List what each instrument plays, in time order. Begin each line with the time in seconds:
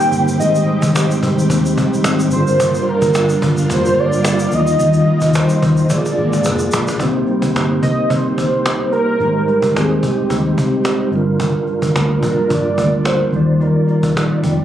Already playing: clean electric guitar C3 G3 A#3 D#4, string machine D#3 A#3 C4 G4, tonewheel organ A#3 D#4 G4 C5, soft synth lead G5
0.00 shaker
0.12 fingered electric bass G1, clean electric guitar G3, cajon slap, shaker
0.28 shaker
0.38 fingered electric bass G#1, clean electric guitar G#2, tonewheel organ G#3 D#4 G4, soft synth lead D#5, cajon slap, shaker
0.43 tonewheel organ C5
0.55 shaker
0.66 clean electric guitar G3, cajon slap
0.82 fingered electric bass G#1, cajon bass, shaker
0.94 clean electric guitar D#4, cajon slap, shaker
1.11 shaker
1.21 fingered electric bass G#1, clean electric guitar G3, cajon bass
1.39 shaker
1.48 fingered electric bass D#2, clean electric guitar C4, cajon bass, cajon slap, shaker
1.66 shaker
1.77 fingered electric bass C2, clean electric guitar G3, cajon bass, cajon slap
1.94 shaker
2.04 fingered electric bass G#1, clean electric guitar C4, cajon slap, shaker
2.20 shaker
2.31 fingered electric bass G1, clean electric guitar G2, string machine D3 G3 A#3 F4, tonewheel organ G3 D4 F4, soft synth lead C5, cajon slap, shaker
2.35 tonewheel organ G#4
2.42 tonewheel organ A#4
2.47 shaker
2.59 clean electric guitar G2, cajon bass, shaker
2.74 shaker
2.86 clean electric guitar F3, soft synth lead A#4, cajon slap
3.02 fingered electric bass G1, cajon bass, shaker
3.13 clean electric guitar D4, cajon slap, shaker
3.29 shaker
3.40 fingered electric bass G1, clean electric guitar F3, cajon bass
3.57 shaker
3.67 fingered electric bass F1, clean electric guitar A#3, cajon bass, cajon slap, shaker
3.73 soft synth lead C5
3.85 shaker
3.96 fingered electric bass G1, clean electric guitar F3, soft synth lead D5, cajon slap
4.13 shaker
4.24 clean electric guitar A#3, cajon slap, shaker
4.39 shaker
4.51 fingered electric bass D#2, string machine D#3 D#4, clean electric guitar D#3, tonewheel organ F3 D#4 F4, soft synth lead D#5, cajon slap, shaker
4.55 tonewheel organ G3 D#5
4.67 shaker
4.79 fingered electric bass D#2, clean electric guitar D#3, cajon slap, shaker
4.93 cajon slap, shaker
5.06 clean electric guitar A#3, cajon slap
5.21 fingered electric bass D#2, cajon bass, shaker
5.34 clean electric guitar G4, soft synth lead C5, cajon slap, shaker
5.49 shaker
5.61 fingered electric bass D#2, clean electric guitar A#3, cajon bass
5.77 shaker
5.88 fingered electric bass A#1, clean electric guitar A#2, string machine D3 G#3 A#3, tonewheel organ A#3 F4 G#4, cajon bass, cajon slap, shaker
5.91 tonewheel organ C#5, soft synth lead D5, cajon slap
5.99 tonewheel organ D5
6.05 cajon slap, shaker
6.16 fingered electric bass G#1, clean electric guitar A#3, cajon slap
6.33 cajon slap, shaker
6.44 fingered electric bass F1, clean electric guitar D4, cajon slap, shaker
6.59 shaker
6.72 fingered electric bass A#1, clean electric guitar A#3, cajon slap, shaker
6.87 cajon slap, shaker
6.98 fingered electric bass C2, clean electric guitar C3, tonewheel organ A#3 D#4 G4, cajon bass
7.03 tonewheel organ C5
7.27 clean electric guitar G3, cajon slap
7.42 fingered electric bass C2, cajon bass
7.54 fingered electric bass G1, clean electric guitar A#3, cajon slap
7.82 fingered electric bass C2, clean electric guitar D#4, soft synth lead D#5, cajon bass
8.10 fingered electric bass C3, clean electric guitar G3, soft synth lead C5, cajon bass, cajon slap
8.37 fingered electric bass C2, clean electric guitar A#3, cajon bass
8.65 clean electric guitar D#4, cajon slap
8.92 clean electric guitar A#3, soft synth lead A#4, cajon slap
9.18 fingered electric bass G#1, clean electric guitar G#2, tonewheel organ G#3 D#4 G4, cajon slap
9.24 tonewheel organ C5
9.46 clean electric guitar G3, cajon slap
9.62 fingered electric bass G#1, cajon bass
9.74 fingered electric bass D#2, clean electric guitar C4, soft synth lead G#4, cajon slap
10.02 fingered electric bass C2, clean electric guitar D#4, soft synth lead G4, cajon bass
10.29 fingered electric bass D#2, clean electric guitar G3, cajon bass, cajon slap
10.58 fingered electric bass C2, clean electric guitar C4, cajon bass
10.85 clean electric guitar D#4, cajon slap
11.11 fingered electric bass G1, clean electric guitar G2, tonewheel organ G3 D4 F4, cajon slap
11.16 tonewheel organ A#4
11.40 clean electric guitar G2, cajon bass
11.67 clean electric guitar F3, cajon slap
11.82 fingered electric bass G1, cajon bass
11.94 fingered electric bass D2, clean electric guitar A#3, cajon slap
12.22 fingered electric bass A#1, clean electric guitar D4, soft synth lead A#4, cajon bass
12.49 fingered electric bass G2, clean electric guitar F3, soft synth lead D5, cajon bass, cajon slap
12.77 fingered electric bass D2, clean electric guitar A#3, cajon bass
13.04 clean electric guitar D4, soft synth lead C5, cajon slap
13.31 fingered electric bass D#2, clean electric guitar D#3, tonewheel organ G3 D#4 F4, cajon slap
13.36 tonewheel organ D5
13.60 clean electric guitar D#3, soft synth lead A#4, cajon slap
13.87 clean electric guitar A#3, cajon slap
14.03 fingered electric bass D#2, cajon bass
14.15 fingered electric bass A#1, clean electric guitar D4, cajon slap
14.43 fingered electric bass F2, clean electric guitar G4, cajon bass